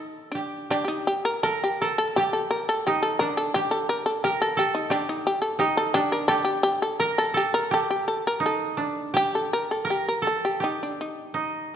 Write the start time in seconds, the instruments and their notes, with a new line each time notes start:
Already playing: shamisen D#4, koto G4 A4
0.32 shamisen D4, koto G4
0.70 shamisen D4, koto G4
0.84 shamisen D#4 G4
1.07 shamisen G4
1.25 shamisen A#4
1.43 shamisen A4, koto A#4
1.64 shamisen G4
1.82 koto A4, shamisen A#4
1.98 shamisen A4
2.16 shamisen G4, koto G4
2.33 shamisen A4
2.51 shamisen A#4
2.69 shamisen A4
2.87 koto D#4, shamisen G4
3.03 shamisen A4
3.19 koto D4, shamisen A#4
3.37 shamisen A4
3.54 shamisen G4, koto G4
3.71 shamisen A4
3.89 shamisen A#4
4.06 shamisen A4
4.24 shamisen G4, koto A#4
4.42 shamisen A4
4.57 shamisen G4, koto A4
4.75 shamisen D#4
4.90 shamisen D4, koto G4
5.09 shamisen D#4
5.27 shamisen G4
5.42 shamisen A4
5.59 koto D#4, shamisen G4
5.77 shamisen A4
5.94 koto D4, shamisen G4
6.12 shamisen A#4
6.28 koto G4, shamisen A4
6.45 shamisen G4
6.63 shamisen G4
6.82 shamisen A4
7.00 shamisen A#4, koto A#4
7.18 shamisen A4
7.34 shamisen G4, koto A4
7.54 shamisen A#4
7.71 koto G4, shamisen A4
7.90 shamisen G4
8.08 shamisen A4
8.27 shamisen A#4
8.40 koto D#4
8.46 shamisen A4
8.77 koto D4
9.14 koto G4, shamisen G4
9.35 shamisen A4
9.53 shamisen A#4
9.71 shamisen A4
9.85 koto A#4
9.90 shamisen G4
10.09 shamisen A#4
10.22 koto A4
10.27 shamisen A4
10.45 shamisen G4
10.60 shamisen D#4, koto G4
10.83 shamisen D4
11.01 shamisen D#4
11.34 koto D#4